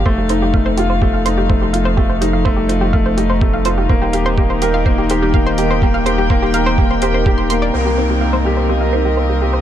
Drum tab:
HH |-x-x-x-x|-x-x-x-x|-x-x-x-x|-x-x-x-x|
BD |o-o-o-o-|o-o-o-o-|o-o-o-o-|o-o-o-o-|

HH |--------|
BD |--------|